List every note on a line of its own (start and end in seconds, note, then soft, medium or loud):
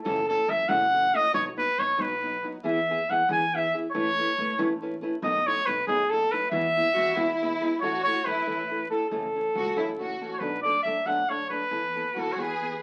0.03 0.34 F#1 loud
0.03 0.19 F#2 medium
0.03 0.19 C#3 medium
0.03 0.19 E3 loud
0.03 0.19 A3 loud
0.03 0.19 C#4 medium
0.03 0.19 F#4 loud
0.03 0.25 A4 medium
0.28 0.41 E3 medium
0.28 0.41 A3 medium
0.28 0.41 C#4 medium
0.28 0.42 F#4 medium
0.28 0.51 A4 loud
0.48 0.62 F#2 medium
0.48 0.61 E3 medium
0.48 0.61 A3 medium
0.48 0.61 C#4 medium
0.48 0.62 F#4 medium
0.48 0.70 E5 medium
0.68 1.11 F#1 loud
0.68 0.83 F#2 medium
0.68 0.83 C#3 medium
0.68 0.83 E3 medium
0.68 0.83 A3 medium
0.68 0.83 C#4 medium
0.68 0.83 F#4 medium
0.68 1.16 F#5 loud
0.94 1.05 E3 medium
0.94 1.05 A3 medium
0.94 1.06 C#4 medium
0.94 1.06 F#4 medium
1.13 1.25 E3 medium
1.13 1.25 A3 medium
1.13 1.26 C#4 medium
1.13 1.26 F#4 medium
1.13 1.34 D#5 loud
1.33 1.62 B1 loud
1.33 1.47 B2 medium
1.33 1.47 F#3 medium
1.33 1.47 B3 medium
1.33 1.48 D#4 medium
1.33 1.48 F#4 medium
1.33 1.45 C#5 medium
1.56 1.69 F#3 medium
1.56 1.69 B3 medium
1.56 1.70 D#4 medium
1.56 1.70 F#4 medium
1.56 1.81 B4 loud
1.78 1.91 B2 medium
1.78 1.90 F#3 medium
1.78 1.91 B3 medium
1.78 1.91 D#4 medium
1.78 1.91 F#4 medium
1.78 2.02 C#5 medium
1.97 2.41 B1 medium
1.97 2.12 B2 medium
1.97 2.12 F#3 medium
1.97 2.12 B3 medium
1.97 2.12 D#4 medium
1.97 2.13 F#4 medium
1.97 2.49 B4 medium
2.22 2.35 F#3 medium
2.22 2.35 B3 medium
2.22 2.35 D#4 medium
2.22 2.35 F#4 medium
2.42 2.55 F#3 medium
2.42 2.56 B3 medium
2.42 2.56 D#4 medium
2.42 2.56 F#4 medium
2.63 2.93 E2 medium
2.63 2.78 E3 medium
2.63 2.78 B3 medium
2.63 2.78 E4 medium
2.63 2.79 G#4 medium
2.63 3.12 E5 medium
2.89 3.01 E3 medium
2.89 3.01 B3 medium
2.89 3.01 E4 medium
2.89 3.02 G#4 medium
3.09 3.22 E3 medium
3.09 3.21 E3 medium
3.09 3.22 B3 medium
3.09 3.22 E4 medium
3.09 3.22 G#4 medium
3.09 3.30 F#5 loud
3.29 3.71 E2 loud
3.29 3.43 E3 medium
3.29 3.43 B3 medium
3.29 3.44 E4 medium
3.29 3.44 G#4 medium
3.29 3.57 G#5 medium
3.53 3.65 E3 medium
3.53 3.65 B3 medium
3.53 3.66 E4 medium
3.53 3.66 G#4 medium
3.53 3.75 E5 loud
3.73 3.85 E3 medium
3.73 3.86 B3 medium
3.73 3.86 E4 medium
3.73 3.86 G#4 medium
3.92 4.23 A1 loud
3.92 4.08 A3 medium
3.92 4.09 C#4 medium
3.92 4.08 E4 medium
3.92 4.08 B4 loud
3.92 4.77 C#5 loud
4.18 4.30 A3 medium
4.18 4.30 C#4 medium
4.18 4.31 E4 medium
4.18 4.31 B4 medium
4.38 4.51 A2 medium
4.38 4.51 A3 medium
4.38 4.51 C#4 medium
4.38 4.51 E4 medium
4.38 4.51 B4 medium
4.58 5.00 A1 loud
4.58 4.72 A3 medium
4.58 4.72 C#4 medium
4.58 4.72 E4 loud
4.58 4.73 B4 loud
4.82 4.94 A3 medium
4.82 4.94 C#4 medium
4.82 4.94 E4 medium
4.82 4.95 B4 medium
5.01 5.14 A3 medium
5.01 5.14 C#4 medium
5.01 5.15 E4 medium
5.01 5.15 B4 medium
5.22 5.51 B1 loud
5.22 5.37 B2 medium
5.22 5.37 D#3 medium
5.22 5.37 F#3 medium
5.22 5.37 A3 loud
5.22 5.37 D#4 loud
5.22 5.37 F#4 medium
5.22 5.48 D#5 medium
5.46 5.58 F#3 medium
5.46 5.58 A3 medium
5.46 5.59 D#4 medium
5.46 5.59 F#4 medium
5.46 5.68 C#5 loud
5.66 5.80 B2 medium
5.66 5.79 F#3 medium
5.66 5.79 A3 medium
5.66 5.79 D#4 medium
5.66 5.79 F#4 medium
5.66 5.87 B4 medium
5.87 6.29 B1 medium
5.87 6.01 B2 medium
5.87 6.01 D#3 medium
5.87 6.01 F#3 medium
5.87 6.01 A3 medium
5.87 6.01 D#4 medium
5.87 6.02 F#4 medium
5.87 6.11 G#4 medium
6.10 6.23 F#3 medium
6.10 6.23 A3 medium
6.10 6.24 D#4 medium
6.10 6.24 F#4 medium
6.10 6.33 A4 medium
6.32 6.44 F#3 medium
6.32 6.44 A3 medium
6.32 6.44 D#4 medium
6.32 6.44 F#4 medium
6.32 6.50 B4 loud
6.51 6.80 E2 loud
6.51 6.65 E3 medium
6.51 6.65 G#3 medium
6.51 6.66 B3 medium
6.51 6.66 E4 medium
6.51 6.66 F#4 medium
6.51 7.57 E5 loud
6.76 6.88 G#3 medium
6.76 6.88 B3 medium
6.76 6.88 E4 medium
6.76 6.88 F#4 medium
6.93 7.10 E3 medium
6.93 7.08 G#3 medium
6.93 7.08 B3 medium
6.93 7.09 E4 medium
6.93 7.14 F#4 loud
6.97 7.09 F#4 medium
7.16 7.59 E2 medium
7.16 7.31 E3 loud
7.16 7.31 G#3 medium
7.16 7.31 B3 medium
7.16 7.82 E4 loud
7.16 7.31 E4 medium
7.16 7.31 F#4 loud
7.41 7.53 G#3 medium
7.41 7.54 B3 medium
7.41 7.54 E4 medium
7.41 7.54 F#4 medium
7.61 7.73 G#3 medium
7.61 7.74 B3 medium
7.61 7.74 E4 medium
7.61 7.74 F#4 medium
7.81 8.11 A1 medium
7.81 7.96 A2 medium
7.81 7.97 E3 medium
7.81 7.96 A3 medium
7.81 7.97 C#4 medium
7.81 7.97 E4 medium
7.81 8.23 F#4 medium
7.81 7.97 A4 medium
7.81 8.03 C#5 medium
8.04 8.18 A3 medium
8.04 8.18 C#4 medium
8.04 8.19 E4 medium
8.04 8.19 A4 medium
8.04 8.27 C#5 loud
8.25 8.40 E2 medium
8.25 8.39 A3 soft
8.25 8.39 C#4 soft
8.25 8.57 E4 medium
8.25 8.39 E4 soft
8.25 8.39 A4 medium
8.25 8.90 B4 medium
8.45 8.89 A1 medium
8.45 8.60 A2 medium
8.45 8.61 E3 medium
8.45 8.61 A3 medium
8.45 8.61 C#4 medium
8.45 8.61 E4 medium
8.45 8.61 A4 medium
8.70 8.83 A3 medium
8.70 8.83 C#4 soft
8.70 8.83 E4 medium
8.70 8.83 A4 medium
8.90 9.03 A3 medium
8.90 9.04 C#4 soft
8.90 9.04 E4 medium
8.90 9.09 A4 medium
8.90 9.04 A4 medium
9.10 9.40 F#1 medium
9.10 9.26 F#2 medium
9.10 9.26 C#3 medium
9.10 9.26 E3 medium
9.10 9.26 A3 medium
9.10 9.27 C#4 medium
9.10 10.16 A4 medium
9.10 9.26 A4 medium
9.35 9.47 E3 medium
9.35 9.48 A3 medium
9.35 9.48 C#4 medium
9.35 9.48 A4 medium
9.54 9.69 C#2 medium
9.54 9.67 E3 soft
9.54 9.68 A3 medium
9.54 9.68 C#4 medium
9.54 9.75 F#4 loud
9.54 9.68 A4 medium
9.75 10.18 F#1 medium
9.75 9.90 F#2 medium
9.75 9.91 C#3 medium
9.75 9.91 E3 medium
9.75 9.91 A3 medium
9.75 9.91 C#4 medium
9.75 9.88 E4 medium
9.75 9.91 A4 medium
9.99 10.12 E3 medium
9.99 10.12 A3 medium
9.99 10.13 C#4 medium
9.99 10.29 F#4 medium
9.99 10.13 A4 medium
10.21 10.33 E3 medium
10.21 10.33 A3 medium
10.21 10.33 C#4 medium
10.21 10.34 A4 medium
10.33 10.41 C#5 medium
10.39 10.70 B1 loud
10.39 10.55 B2 medium
10.39 10.56 F#3 medium
10.39 10.55 A3 medium
10.39 10.56 D4 medium
10.39 10.56 A4 medium
10.39 10.61 B4 medium
10.62 10.77 F#3 medium
10.62 10.77 A3 medium
10.62 10.77 D4 medium
10.62 10.77 A4 medium
10.62 10.82 D5 loud
10.83 10.99 F#2 medium
10.83 10.98 F#3 soft
10.83 10.98 A3 medium
10.83 10.98 D4 medium
10.83 11.08 E5 medium
10.87 10.99 A4 medium
11.05 11.48 B1 medium
11.05 11.20 B2 medium
11.05 11.21 F#3 medium
11.05 11.20 A3 medium
11.05 11.21 D4 medium
11.05 11.21 A4 medium
11.05 11.31 F#5 medium
11.28 11.42 F#3 medium
11.28 11.42 A3 soft
11.28 11.42 D4 medium
11.28 11.43 A4 medium
11.28 11.49 C#5 medium
11.49 11.63 F#3 medium
11.49 11.63 A3 medium
11.49 11.63 D4 medium
11.49 11.64 A4 medium
11.49 12.21 B4 medium
11.71 12.00 E2 medium
11.71 11.85 E3 medium
11.71 11.86 B3 medium
11.71 11.86 E4 medium
11.71 11.86 A4 medium
11.94 12.07 E3 soft
11.94 12.08 B3 medium
11.94 12.08 E4 medium
11.94 12.08 A4 medium
12.15 12.30 B1 medium
12.15 12.28 E3 medium
12.15 12.29 B3 soft
12.15 12.29 E4 soft
12.15 12.35 F#4 medium
12.15 12.29 A4 medium
12.19 12.34 A4 medium
12.32 12.79 E2 medium
12.32 12.41 C#5 soft
12.37 12.51 E3 medium
12.37 12.52 B3 medium
12.37 12.52 F#4 medium
12.37 12.82 G#4 loud
12.37 12.52 G#4 medium
12.37 12.82 B4 medium
12.61 12.73 E3 medium
12.61 12.74 B3 soft
12.61 12.74 F#4 medium
12.61 12.74 G#4 medium